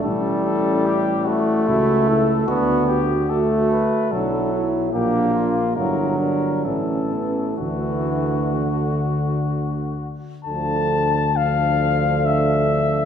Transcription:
<<
  \new Staff \with { instrumentName = "Cornet" } { \time 3/4 \key d \major \tempo 4 = 70 a'8 a'8 g'8 fis'8 e'8 a'8 | fis'8 g'8 a'8 b'8 a'8 r8 | g'8 f'8 bes'8 bes'8 a'4 | fis'2~ fis'8 r8 |
\key d \minor a''4 f''4 e''4 | }
  \new Staff \with { instrumentName = "French horn section" } { \time 3/4 \key d \major cis'4 e'4 e'4 | d'4 fis'4 e'4 | d'4 d'4 cis'4 | d'2~ d'8 r8 |
\key d \minor a'4 a'2 | }
  \new Staff \with { instrumentName = "Euphonium" } { \time 3/4 \key d \major e'2 fis'8 e'8 | d'8 fis'4 r8 d'8 e'8 | f'4 e'8 d'8 cis'8 b8 | a2~ a8 r8 |
\key d \minor d'4 d'2 | }
  \new Staff \with { instrumentName = "Trombone" } { \clef bass \time 3/4 \key d \major g4. a4. | b8 r8 a4 fis4 | bes4 fis4 e4 | e4 d4 r4 |
\key d \minor f4 f2 | }
  \new Staff \with { instrumentName = "Tuba" } { \clef bass \time 3/4 \key d \major a,,2 cis,4 | d,4. r8 b,,4 | bes,,4 g,,4 a,,4 | d,2~ d,8 r8 |
\key d \minor d,2. | }
>>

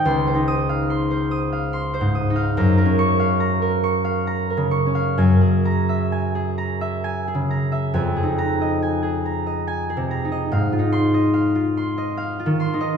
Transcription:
<<
  \new Staff \with { instrumentName = "Harp" } { \time 3/4 \key ges \lydian \tempo 4 = 71 << { r8 ees'''2~ ees'''8 | r8 des'''2~ des'''8~ | des'''8 bes''2~ bes''8~ | bes''8 bes''2~ bes''8 |
r8 c'''2~ c'''8 | } \\ { <c'' c''' ees'''>16 c''8 f''16 c'''16 c''16 ees'''16 f''16 c'''16 c''16 ees'''16 f''16 | bes''16 bes'8 f''16 bes''16 bes'16 des'''16 f''16 bes''16 bes'16 des'''16 f''16 | aes''16 aes'8 fes''16 aes''16 aes'16 bes''16 fes''16 aes''16 aes'16 bes''16 fes''16 | aes''16 aes'8 ees''16 aes''16 aes'16 bes''16 ees''16 aes''16 aes'16 bes''16 ees''16 |
f''16 f'8 ees''16 f''16 f'16 c'''16 ees''16 f''16 f'16 c'''16 ees''16 | } >> }
  \new Staff \with { instrumentName = "Harp" } { \clef bass \time 3/4 \key ges \lydian \tuplet 3/2 { <des, aes ees'>8 ees'4~ } ees'4~ \tuplet 3/2 { ees'8 aes,8 ees'8 } | \tuplet 3/2 { ges,8 des'4~ } des'4~ \tuplet 3/2 { des'8 des8 des'8 } | ges,2~ \tuplet 3/2 { ges,8 des4 } | \tuplet 3/2 { f,8 ees'4~ } ees'4~ \tuplet 3/2 { ees'8 c8 ees'8 } |
\tuplet 3/2 { aes,8 ees'4~ } ees'4~ \tuplet 3/2 { ees'8 ees8 ees'8 } | }
>>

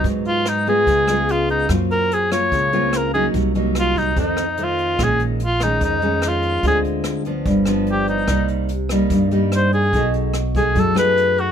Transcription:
<<
  \new Staff \with { instrumentName = "Cor anglais" } { \time 4/4 \key c \phrygian \tempo 4 = 146 r8 f'8 ees'8 aes'4. f'8 ees'8 | r8 bes'8 aes'8 des''4. bes'8 aes'8 | r4 f'8 ees'8 ees'4 f'4 | aes'8 r8 f'8 ees'8 ees'4 f'4 |
aes'8 r2 r8 g'8 ees'8~ | ees'8 r2 r8 c''8 aes'8~ | aes'8 r4 gis'8 a'8 b'4 fis'8 | }
  \new Staff \with { instrumentName = "Nylon-string guitar" } { \time 4/4 \key c \phrygian << { <ges b ees'>4. <aes ces' f'>4 <aes ces' f'>4. | <bes c' f'>4. <bes f'>4 <bes c' f'>4 <ges bes ees'>8~ | <ges bes ees'>8 <ges bes ees'>4. <ees a c'>8 r8 <ees a c'>4 | <ees aes des'>4 r8 <ees aes des'>4 <ees aes des'>4. |
<aes c' f'>4. <f b d'>4 <f b d'>4. | <g bes ees'>4 r8 <g bes ees'>4 <g bes ees'>4. | <a dis' gis'>4 r8 <a dis' gis'>4 <a dis' gis'>4. | } \\ { aes,2 des2 | ges2 des2 | c2 f,2 | bes,2 f,2 |
d2 g,2 | c2 g,2 | b,2 fis2 | } >> }
  \new Staff \with { instrumentName = "Upright bass" } { \clef bass \time 4/4 \key c \phrygian aes,2 des,2 | ges,2 des,2 | c,2 f,2 | bes,,2 f,2 |
d,2 g,,2 | c,2 g,2 | b,,2 fis,2 | }
  \new DrumStaff \with { instrumentName = "Drums" } \drummode { \time 4/4 <hh bd>8 hh8 <hh ss>8 hh8 <hh bd>8 <hh ss>8 hh8 hh8 | <hh bd ss>8 hh8 hh8 <hh ss>8 <hh bd>8 hh8 <hh ss>8 hh8 | <hh bd>8 hh8 <hh ss>8 <hh bd>8 <hh bd>8 <hh ss>8 hh8 hh8 | <hh bd ss>8 hh8 hh8 <hh ss>8 <hh bd>8 hh8 <hh ss>8 hh8 |
<hh bd>8 hh8 <hh ss>8 hh8 <hh bd>8 <hh ss>8 hh8 hh8 | <hh bd ss>8 hh8 hh8 <hh ss>8 <hh bd>8 hh8 <hh ss>8 hh8 | <hh bd>8 hh8 <hh ss>8 <hh bd>8 <hh bd>8 <hh ss>8 hh8 hh8 | }
>>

